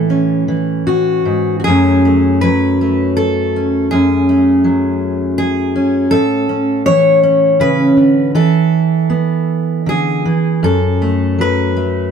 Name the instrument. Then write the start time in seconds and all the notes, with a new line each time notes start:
steel-string acoustic guitar
Already playing: A2 E3 A4
0.10 C#4
0.48 E3
0.86 A2 F#4
1.25 G#2
1.60 F#4
1.64 F#2 F#3 A3 G#4
1.69 C#4
2.05 A3
2.41 F#3 B4
2.81 A3
3.17 A4
3.56 C#4
3.91 F#2 G#4
4.29 A3
4.64 F#3
5.38 G#4
5.76 C#4
6.11 A2 A4
6.49 C#4
6.86 E3 C#5
7.23 C#4
7.60 C#3 B4
7.97 D3
8.35 E3 A4
9.10 B3
9.86 D3 G#4
10.25 E3
10.63 F#2 A4
11.02 A3
11.39 F#3 B4
11.77 A3